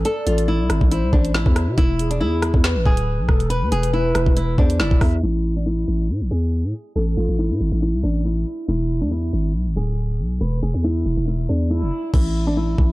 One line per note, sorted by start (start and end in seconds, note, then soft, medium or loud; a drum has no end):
0.05 0.24 A4 loud
0.05 0.87 D5 loud
0.05 closed hi-hat medium
0.27 0.61 A1 loud
0.27 0.45 F4 medium
0.27 closed hi-hat medium
0.38 closed hi-hat medium
0.48 0.89 E4 medium
0.60 0.69 B1 loud
0.70 0.81 G#1 loud
0.70 cross-stick medium
0.70 closed hi-hat medium
0.81 1.04 A1 loud
0.81 kick medium
0.91 1.10 E4 medium
0.91 1.32 C5 medium
0.91 closed hi-hat medium
1.03 1.12 C2 loud
1.13 1.45 A1 loud
1.13 1.32 D4 medium
1.13 kick medium
1.25 closed hi-hat medium
1.34 1.75 E4 medium
1.34 snare loud
1.46 1.69 E2 loud
1.46 kick loud
1.56 cross-stick medium
1.56 closed hi-hat medium
1.68 1.77 C3 loud
1.78 2.22 E1 loud
1.78 2.09 E4 loud
1.78 kick loud
1.78 closed hi-hat medium
1.99 2.60 G#4 medium
1.99 closed hi-hat medium
2.11 2.19 D4 medium
2.11 closed hi-hat medium
2.21 2.52 E2 loud
2.21 2.61 E4 medium
2.42 cross-stick medium
2.42 closed hi-hat medium
2.54 2.77 E2 loud
2.54 kick loud
2.64 3.25 B4 medium
2.64 snare loud
2.64 closed hi-hat medium
2.75 2.85 G#1 loud
2.86 3.20 D1 loud
2.86 3.47 G#4 medium
2.86 kick medium
2.97 closed hi-hat medium
3.19 3.28 B1 loud
3.29 3.63 E1 loud
3.29 3.49 A4 medium
3.29 kick loud
3.29 cross-stick medium
3.40 closed hi-hat medium
3.50 3.69 B4 loud
3.50 4.54 B4 loud
3.50 closed hi-hat medium
3.62 3.71 E2 loud
3.72 4.13 E1 loud
3.72 3.91 G#4 medium
3.72 closed hi-hat medium
3.83 closed hi-hat medium
3.93 4.34 E4 medium
4.15 4.26 E1 loud
4.15 cross-stick medium
4.15 closed hi-hat medium
4.26 4.57 E1 loud
4.26 kick medium
4.37 4.55 E4 medium
4.37 closed hi-hat medium
4.58 4.81 E2 loud
4.58 4.77 D4 medium
4.58 4.79 C5 medium
4.58 kick medium
4.70 closed hi-hat medium
4.80 4.91 F1 loud
4.80 5.20 E4 medium
4.80 5.00 D5 medium
4.80 snare loud
4.91 5.01 E1 loud
4.91 kick loud
5.01 5.22 E2 loud
5.01 5.22 E5 medium
5.01 kick loud
5.01 cross-stick medium
5.01 open hi-hat medium
5.23 5.85 A1 loud
5.23 5.54 E4 medium
5.56 5.65 D4 medium
5.66 6.07 E4 medium
5.88 6.11 A1 loud
6.09 6.22 A2 loud
6.21 6.30 A1 medium
6.31 6.65 E2 loud
6.31 6.92 G#4 medium
6.64 6.74 A2 loud
6.96 7.16 A1 loud
6.96 7.15 A4 medium
7.17 7.28 A1 loud
7.17 7.36 F4 medium
7.29 7.52 A1 loud
7.39 7.79 E4 medium
7.50 7.60 A2 loud
7.60 7.71 G#1 loud
7.72 7.95 A1 loud
7.82 8.01 E4 medium
7.93 8.03 C2 loud
8.03 8.45 A1 loud
8.03 8.22 D4 medium
8.25 8.66 E4 medium
8.68 9.03 E1 loud
8.68 8.99 E4 loud
9.01 9.31 E2 medium
9.01 9.10 D4 medium
9.11 9.52 E4 medium
9.33 9.56 G#1 loud
9.55 9.68 B1 loud
9.66 9.76 G#1 loud
9.76 10.21 D1 loud
9.76 10.37 G#4 medium
10.19 10.40 B1 loud
10.41 10.62 E1 loud
10.41 10.60 B4 loud
10.62 10.74 E1 loud
10.62 10.81 G#4 medium
10.74 11.04 E2 medium
10.84 11.25 E4 medium
11.06 11.17 E1 loud
11.17 11.48 E1 medium
11.27 11.46 E4 medium
11.49 11.83 E2 loud
11.49 11.68 D4 medium
11.70 12.11 E4 medium
11.82 11.92 F1 loud
12.14 12.76 A1 loud
12.14 12.45 E4 loud
12.14 kick loud
12.14 crash medium
12.47 12.56 D4 medium
12.57 12.92 E4 medium
12.78 12.92 A1 loud
12.78 kick loud